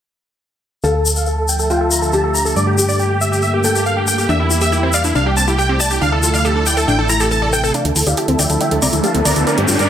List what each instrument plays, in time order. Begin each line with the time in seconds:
0.84 fm bass D2, analog synth pad D3 F3 A3 E5, felt piano A4, supersaw synth F5, shaker
0.94 supersaw synth A4
1.06 supersaw synth A4, shaker
1.16 supersaw synth F5, shaker
1.26 supersaw synth A4, shaker
1.38 supersaw synth A4
1.48 supersaw synth G5, shaker
1.59 supersaw synth A4, shaker
1.70 felt piano F4, supersaw synth G5, shaker
1.81 supersaw synth A4
1.91 supersaw synth A#5, shaker
2.02 supersaw synth A4, shaker
2.13 felt piano G4, supersaw synth A5, shaker
2.24 supersaw synth A4
2.34 supersaw synth A#5, shaker
2.45 supersaw synth A4, shaker
2.56 fm bass G2, analog synth pad A#3 G4, supersaw synth D5, shaker
2.67 supersaw synth G4
2.78 supersaw synth G4, felt piano G4, shaker
2.88 supersaw synth D5, shaker
2.99 supersaw synth G4, shaker
3.10 supersaw synth G4
3.21 supersaw synth E5, shaker
3.32 supersaw synth G4, shaker
3.42 supersaw synth E5, shaker
3.54 supersaw synth G4
3.64 felt piano A4, supersaw synth G5, shaker
3.75 supersaw synth G4, shaker
3.86 supersaw synth F5, shaker
3.97 supersaw synth G4
4.07 supersaw synth G5, shaker
4.18 supersaw synth G4, shaker
4.29 fm bass E2, analog synth pad E3 G3 G4, synth arpeggio sound D4, supersaw synth E5, shaker
4.40 synth arpeggio sound D4, supersaw synth E4
4.51 synth arpeggio sound E4, supersaw synth E4, shaker
4.61 synth arpeggio sound G4, supersaw synth E5, shaker
4.72 supersaw synth E4, synth arpeggio sound G4, shaker
4.83 synth arpeggio sound C4, supersaw synth E4
4.93 synth arpeggio sound D5, supersaw synth F5, shaker
5.04 synth arpeggio sound D4, supersaw synth E4, shaker
5.15 fm bass C2, analog synth pad C3 A3 E4, synth arpeggio sound D4, supersaw synth F5, shaker
5.26 synth arpeggio sound D4, supersaw synth G4
5.37 synth arpeggio sound C4, supersaw synth A5, shaker
5.47 synth arpeggio sound E4, supersaw synth G4, shaker
5.58 synth arpeggio sound G4, supersaw synth G5, shaker
5.69 synth arpeggio sound C4, supersaw synth G4
5.80 synth arpeggio sound D5, supersaw synth A5, shaker
5.90 synth arpeggio sound D4, supersaw synth G4, shaker
6.01 fm bass D2, analog synth pad D3 F3, synth arpeggio sound D4, supersaw synth F5, shaker
6.12 synth arpeggio sound D4, supersaw synth A4
6.23 synth arpeggio sound F4, supersaw synth A4, shaker
6.34 synth arpeggio sound D5, supersaw synth F5, shaker
6.45 synth arpeggio sound G4, supersaw synth A4, shaker
6.55 synth arpeggio sound D4, supersaw synth A4
6.66 synth arpeggio sound D5, supersaw synth G5, shaker
6.77 synth arpeggio sound A4, supersaw synth A4, shaker
6.88 fm bass A1, analog synth pad C3 E3, synth arpeggio sound D4, supersaw synth G5, shaker
6.99 synth arpeggio sound D4, supersaw synth A4
7.09 synth arpeggio sound E4, supersaw synth A#5, shaker
7.20 synth arpeggio sound G4, supersaw synth A4, shaker
7.31 synth arpeggio sound A4, supersaw synth A5, shaker
7.42 supersaw synth A4, synth arpeggio sound D5
7.53 synth arpeggio sound A4, supersaw synth G5, shaker
7.63 supersaw synth A4, synth arpeggio sound A4, shaker
7.74 analog synth pad D3 F3 A3 E4, synth arpeggio sound D4, supersaw synth D5 F5, closed hi-hat, riser, shaker
7.85 fm bass D2, synth arpeggio sound D4, supersaw synth A4, closed hi-hat
7.96 fm bass D2, synth arpeggio sound E4, supersaw synth A4, open hi-hat, shaker
8.07 fm bass D2, synth arpeggio sound G4, supersaw synth D5 F5, closed hi-hat, shaker
8.17 synth arpeggio sound G4, supersaw synth A4, closed hi-hat, shaker
8.28 fm bass D2, synth arpeggio sound C4, supersaw synth A4, closed hi-hat
8.39 fm bass D2, synth arpeggio sound D5, supersaw synth E5 G5, open hi-hat, shaker
8.50 fm bass D2, synth arpeggio sound D4, supersaw synth A4, closed hi-hat, shaker
8.61 synth arpeggio sound D4, supersaw synth E5 G5, closed hi-hat, shaker
8.71 fm bass D2, synth arpeggio sound D4, supersaw synth A4, closed hi-hat
8.82 fm bass C2, synth arpeggio sound C4, supersaw synth D5 A#5, open hi-hat, shaker
8.93 fm bass D2, synth arpeggio sound E4, supersaw synth A4, closed hi-hat, shaker
9.04 synth arpeggio sound G4, supersaw synth F5 A5, closed hi-hat, shaker
9.15 fm bass D2, synth arpeggio sound C4, supersaw synth A4, closed hi-hat
9.25 fm bass D2, supersaw synth D5 A#5, synth arpeggio sound D5, open hi-hat, shaker
9.36 fm bass D2, synth arpeggio sound D4, supersaw synth A4, closed hi-hat, shaker
9.47 analog synth pad A#3 G4, synth arpeggio sound D4, supersaw synth A#4 D5, closed hi-hat, shaker
9.58 fm bass G2, synth arpeggio sound D4, supersaw synth G4, closed hi-hat
9.68 fm bass G2, synth arpeggio sound F4, supersaw synth G4, open hi-hat, shaker
9.79 fm bass G2, supersaw synth A#4 D5, synth arpeggio sound D5, closed hi-hat, shaker